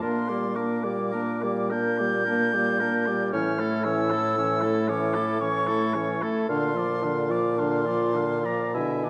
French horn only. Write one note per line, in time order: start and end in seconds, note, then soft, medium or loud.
0.04 0.31 A#3 medium
0.30 0.58 G3 medium
0.57 0.86 A#3 medium
0.85 1.14 G3 medium
1.14 1.45 A#3 medium
1.44 1.74 G3 medium
1.73 2.02 A#3 medium
2.01 2.27 G3 medium
2.27 2.56 A#3 medium
2.55 2.83 G3 medium
2.81 3.10 A#3 medium
3.08 3.33 G3 medium
3.34 3.62 E3 medium
3.60 3.88 A3 medium
3.86 4.14 E3 medium
4.13 4.38 A3 medium
4.38 4.65 E3 medium
4.64 4.91 A3 medium
4.90 5.18 E3 medium
5.16 5.41 A3 medium
5.42 5.71 E3 medium
5.69 5.97 A3 medium
5.96 6.24 E3 medium
6.23 6.49 A3 medium
6.50 6.78 D3 medium
6.76 7.05 F3 medium
7.04 7.32 D3 medium
7.31 7.58 F3 medium
7.59 7.89 D3 medium
7.87 8.17 F3 medium
8.15 8.46 D3 medium
8.45 8.75 F3 medium
8.75 9.07 D3 medium
9.05 9.10 E3 medium